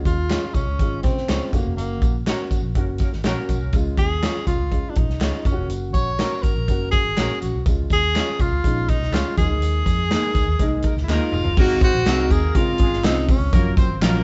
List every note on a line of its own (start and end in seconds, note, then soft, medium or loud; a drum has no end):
0.00 0.11 G#3 medium
0.00 0.12 C#4 medium
0.00 0.12 F4 medium
0.05 0.35 D#2 loud
0.05 0.56 F4 loud
0.05 kick medium
0.05 closed hi-hat medium
0.05 tambourine soft
0.30 0.60 G#3 medium
0.30 0.61 C#4 medium
0.30 0.43 F4 medium
0.30 0.61 F4 medium
0.30 0.43 G#4 medium
0.30 0.43 C#5 medium
0.30 snare loud
0.30 clap medium
0.30 closed hi-hat medium
0.30 tambourine loud
0.54 0.64 C2 medium
0.54 1.02 C#4 medium
0.54 kick medium
0.54 closed hi-hat medium
0.54 tambourine medium
0.67 0.77 C#2 medium
0.79 1.05 G#1 medium
0.79 1.09 G#3 medium
0.79 1.10 C#4 medium
0.79 1.10 F4 medium
0.79 kick medium
0.79 closed hi-hat medium
0.79 tambourine soft
1.03 1.23 C#3 medium
1.03 1.54 C4 medium
1.03 kick loud
1.03 snare soft
1.03 closed hi-hat medium
1.03 tambourine soft
1.18 snare soft
1.28 1.38 C#2 medium
1.28 1.53 G#3 medium
1.28 1.52 C#4 medium
1.28 1.41 F4 medium
1.28 1.54 F4 medium
1.28 1.41 G#4 medium
1.28 1.41 C#5 medium
1.28 snare loud
1.28 clap medium
1.28 closed hi-hat medium
1.28 tambourine medium
1.52 1.63 F#1 medium
1.52 1.59 A3 medium
1.52 1.76 A#3 medium
1.52 2.12 C#4 medium
1.52 2.12 F#4 medium
1.52 kick medium
1.52 closed hi-hat medium
1.52 tambourine medium
1.59 2.15 A#3 medium
1.65 1.75 F1 medium
1.76 2.02 F#1 loud
1.76 2.22 A#3 medium
1.76 closed hi-hat medium
1.76 tambourine medium
2.02 2.31 A#1 loud
2.02 kick loud
2.02 closed hi-hat medium
2.02 tambourine medium
2.26 2.57 A#3 medium
2.26 2.57 C#4 medium
2.26 2.39 F#4 medium
2.26 2.57 F#4 medium
2.26 2.40 A#4 medium
2.26 2.40 C#5 medium
2.26 snare loud
2.26 clap loud
2.26 closed hi-hat medium
2.26 tambourine loud
2.50 2.60 G#1 medium
2.50 kick medium
2.50 closed hi-hat medium
2.50 tambourine medium
2.62 2.72 A#1 medium
2.75 3.05 F#1 medium
2.75 2.86 F#3 medium
2.75 3.05 A#3 medium
2.75 2.86 A#3 medium
2.75 2.86 C#4 medium
2.75 3.06 C#4 medium
2.75 3.06 F#4 medium
2.75 2.86 A#4 medium
2.75 kick medium
2.75 closed hi-hat medium
2.98 3.10 F#3 medium
2.98 3.10 A#3 medium
2.98 3.10 C#4 medium
2.98 3.10 A#4 medium
2.98 kick loud
2.98 snare soft
2.98 closed hi-hat medium
2.98 tambourine soft
3.12 3.22 G#1 medium
3.12 snare soft
3.24 3.34 A#1 medium
3.24 3.71 F#3 loud
3.24 3.71 A#3 loud
3.24 3.54 A#3 medium
3.24 3.71 C#4 medium
3.24 3.55 C#4 medium
3.24 3.37 F#4 medium
3.24 3.55 F#4 loud
3.24 3.71 A#4 loud
3.24 3.37 A#4 medium
3.24 3.38 C#5 medium
3.24 snare loud
3.24 clap loud
3.24 closed hi-hat medium
3.24 tambourine medium
3.49 3.59 A#1 medium
3.49 kick medium
3.49 closed hi-hat medium
3.49 tambourine medium
3.60 3.70 C2 medium
3.73 3.93 C#2 loud
3.73 4.04 G#3 medium
3.73 4.04 C#4 medium
3.73 4.04 F4 medium
3.73 kick loud
3.73 closed hi-hat medium
3.73 tambourine medium
3.97 4.27 D#2 medium
3.97 4.44 G#4 loud
3.97 kick medium
3.97 closed hi-hat medium
3.97 tambourine medium
4.22 4.52 G#3 medium
4.22 4.53 C#4 medium
4.22 4.35 F4 medium
4.22 4.53 F4 medium
4.22 4.35 G#4 medium
4.22 4.36 C#5 medium
4.22 snare loud
4.22 clap loud
4.22 closed hi-hat medium
4.22 tambourine loud
4.47 4.57 C2 medium
4.47 4.91 F4 medium
4.47 kick medium
4.47 closed hi-hat medium
4.47 tambourine medium
4.58 4.78 C#2 medium
4.71 5.01 G#3 medium
4.71 5.02 C#4 medium
4.71 5.02 F4 medium
4.71 kick medium
4.71 closed hi-hat medium
4.90 4.98 D4 medium
4.95 5.06 A#1 medium
4.95 5.48 D#4 medium
4.95 kick loud
4.95 closed hi-hat medium
5.08 5.18 C2 medium
5.08 snare soft
5.20 5.30 C#2 medium
5.20 5.45 G#3 medium
5.20 5.44 C#4 medium
5.20 5.33 F4 medium
5.20 5.44 F4 medium
5.20 5.34 G#4 medium
5.20 5.34 C#5 medium
5.20 snare loud
5.20 clap medium
5.20 closed hi-hat medium
5.20 tambourine medium
5.45 5.55 F#1 medium
5.45 6.04 A#3 medium
5.45 6.04 C#4 medium
5.45 5.70 C#4 medium
5.45 5.51 F4 medium
5.45 kick medium
5.45 closed hi-hat medium
5.45 tambourine medium
5.52 6.08 F#4 medium
5.57 5.67 F1 medium
5.68 5.94 F#1 medium
5.68 closed hi-hat medium
5.68 tambourine medium
5.93 6.23 A#1 loud
5.93 6.44 C#5 loud
5.93 kick medium
5.93 closed hi-hat medium
5.93 tambourine medium
6.19 6.49 A#3 medium
6.19 6.50 C#4 medium
6.19 6.31 F#4 medium
6.19 6.50 F#4 medium
6.19 6.32 A#4 medium
6.19 6.32 C#5 loud
6.19 snare loud
6.19 clap loud
6.19 closed hi-hat medium
6.19 tambourine loud
6.42 6.53 G#1 medium
6.42 6.91 A#4 medium
6.42 kick medium
6.42 closed hi-hat medium
6.42 tambourine medium
6.54 6.65 A#1 medium
6.68 6.97 F#1 medium
6.68 6.98 A#3 medium
6.68 6.99 C#4 medium
6.68 6.99 F#4 medium
6.68 kick medium
6.68 closed hi-hat loud
6.68 tambourine soft
6.91 7.37 G#4 medium
6.91 kick loud
6.91 closed hi-hat medium
6.91 tambourine soft
7.04 7.14 G#1 medium
7.17 7.26 A#1 medium
7.17 7.47 A#3 medium
7.17 7.47 C#4 medium
7.17 7.29 F#4 medium
7.17 7.48 F#4 medium
7.17 7.30 A#4 medium
7.17 7.30 C#5 loud
7.17 snare loud
7.17 clap medium
7.17 closed hi-hat medium
7.17 tambourine medium
7.42 7.52 A#1 medium
7.42 7.64 F#4 medium
7.42 closed hi-hat medium
7.42 tambourine medium
7.54 7.64 C2 medium
7.66 7.85 C#2 loud
7.66 7.96 G#3 medium
7.66 7.97 C#4 medium
7.66 7.97 F4 medium
7.66 kick loud
7.66 closed hi-hat medium
7.66 tambourine medium
7.90 8.20 D#2 medium
7.90 8.42 G#4 loud
7.90 kick medium
7.90 closed hi-hat medium
7.90 tambourine medium
8.15 8.45 G#3 medium
8.15 8.45 C#4 medium
8.15 8.28 F4 medium
8.15 8.46 F4 medium
8.15 8.28 G#4 loud
8.15 8.28 C#5 medium
8.15 snare loud
8.15 clap loud
8.15 closed hi-hat medium
8.15 tambourine loud
8.40 8.49 C2 medium
8.40 8.91 F4 loud
8.40 kick medium
8.40 closed hi-hat medium
8.40 tambourine medium
8.51 8.61 C#2 medium
8.64 8.93 A#1 loud
8.64 8.94 G#3 medium
8.64 8.94 C#4 medium
8.64 8.95 D#4 medium
8.64 kick loud
8.64 closed hi-hat medium
8.64 tambourine soft
8.88 9.16 D#4 medium
8.88 kick medium
8.88 closed hi-hat medium
9.00 9.10 C2 medium
9.00 snare soft
9.11 9.22 C#2 medium
9.11 9.37 G#3 medium
9.11 9.37 C#4 medium
9.11 9.25 F4 medium
9.11 9.38 F4 medium
9.11 9.37 F4 medium
9.11 9.26 G#4 medium
9.11 9.26 C#5 medium
9.11 snare loud
9.11 clap loud
9.11 closed hi-hat medium
9.11 tambourine loud
9.37 9.47 D#2 medium
9.37 9.43 F#3 medium
9.37 9.97 A#3 medium
9.37 9.97 D#4 medium
9.37 10.98 G#4 loud
9.37 kick loud
9.37 closed hi-hat medium
9.37 tambourine medium
9.43 9.99 G#3 medium
9.49 9.61 C#2 medium
9.61 9.81 D#2 loud
9.61 closed hi-hat medium
9.61 tambourine medium
9.86 10.15 F2 loud
9.86 kick medium
9.86 closed hi-hat medium
9.86 tambourine medium
10.10 10.40 G#3 medium
10.10 10.23 A#3 medium
10.10 10.41 A#3 medium
10.10 10.23 D#4 medium
10.10 10.41 D#4 medium
10.10 10.24 G#4 medium
10.10 snare loud
10.10 clap loud
10.10 closed hi-hat medium
10.10 tambourine loud
10.35 10.45 C#2 medium
10.35 kick loud
10.35 closed hi-hat medium
10.35 tambourine medium
10.47 10.57 D#2 medium
10.59 10.88 C2 medium
10.59 10.89 G#3 loud
10.59 10.70 A#3 medium
10.59 10.90 A#3 medium
10.59 10.70 D#4 medium
10.59 10.91 D#4 loud
10.59 10.70 A#4 medium
10.59 kick medium
10.59 closed hi-hat loud
10.59 tambourine soft
10.82 10.95 A#3 medium
10.82 10.95 D#4 medium
10.82 10.95 A#4 medium
10.82 kick medium
10.82 closed hi-hat medium
10.82 tambourine soft
10.97 11.06 C#2 medium
10.97 snare soft
11.03 11.12 E4 medium
11.08 11.18 D#2 medium
11.08 11.38 G#3 medium
11.08 11.21 A#3 medium
11.08 11.55 A#3 loud
11.08 11.39 A#3 medium
11.08 11.21 D#4 medium
11.08 11.55 D#4 loud
11.08 11.39 D#4 loud
11.08 11.59 F4 loud
11.08 11.21 G#4 medium
11.08 11.55 A#4 loud
11.08 snare medium
11.08 clap loud
11.08 tambourine loud
11.32 11.42 F1 medium
11.32 mid tom medium
11.32 tambourine medium
11.44 11.55 F#1 medium
11.44 floor tom medium
11.57 11.86 G#1 loud
11.57 11.87 G#3 medium
11.57 11.77 A#3 loud
11.57 11.87 C4 medium
11.57 11.88 D#4 medium
11.57 11.88 F#4 medium
11.57 11.81 F#4 loud
11.57 11.77 A#4 loud
11.57 kick loud
11.57 crash loud
11.57 tambourine medium
11.69 closed hi-hat medium
11.81 12.01 C4 loud
11.81 12.34 F#4 loud
11.81 12.01 C5 loud
11.81 kick loud
11.81 closed hi-hat medium
11.81 tambourine medium
11.93 12.03 A#1 medium
12.05 12.30 C2 medium
12.05 12.36 G#3 medium
12.05 12.75 A#3 loud
12.05 12.19 C4 medium
12.05 12.36 C4 medium
12.05 12.37 D#4 medium
12.05 12.19 F#4 medium
12.05 12.37 F#4 medium
12.05 12.19 G#4 medium
12.05 12.75 A#4 loud
12.05 snare loud
12.05 clap loud
12.05 closed hi-hat loud
12.05 tambourine loud
12.30 12.50 D#2 loud
12.30 12.58 G#4 loud
12.30 kick medium
12.30 closed hi-hat medium
12.30 tambourine medium
12.55 12.74 C#3 loud
12.55 12.85 G#3 medium
12.55 12.85 C4 medium
12.55 12.85 C#4 medium
12.55 13.06 F4 loud
12.55 12.86 F4 medium
12.55 kick medium
12.55 closed hi-hat loud
12.78 12.99 G#1 loud
12.78 12.99 G#3 medium
12.78 12.99 G#4 loud
12.78 kick loud
12.78 closed hi-hat medium
12.93 snare soft
13.03 13.32 C2 loud
13.03 13.34 G#3 medium
13.03 13.16 C4 medium
13.03 13.34 C4 medium
13.03 13.34 C#4 medium
13.03 13.29 D#4 loud
13.03 13.17 F4 medium
13.03 13.35 F4 medium
13.03 13.17 G#4 medium
13.03 snare loud
13.03 clap medium
13.03 closed hi-hat loud
13.03 tambourine medium
13.28 13.75 C#4 medium
13.28 kick loud
13.28 open hi-hat medium
13.28 tambourine medium
13.40 13.54 C#2 loud
13.52 13.82 F#1 loud
13.52 13.83 F#3 medium
13.52 13.72 A#3 loud
13.52 13.83 A#3 medium
13.52 13.84 C#4 medium
13.52 13.84 F4 medium
13.52 13.72 A#4 loud
13.52 kick loud
13.52 closed hi-hat loud
13.52 tambourine medium
13.77 13.97 C4 loud
13.77 13.97 C5 loud
13.77 kick loud
13.77 closed hi-hat medium
13.77 tambourine medium
13.88 13.98 G#1 loud
14.01 14.20 A#1 loud
14.01 14.23 F#3 medium
14.01 14.23 A#3 loud
14.01 14.23 A#3 medium
14.01 14.14 C#4 medium
14.01 14.23 C#4 medium
14.01 14.15 F4 medium
14.01 14.23 F4 loud
14.01 14.23 A#4 loud
14.01 14.15 A#4 loud
14.01 snare loud
14.01 clap loud
14.01 closed hi-hat loud
14.01 tambourine loud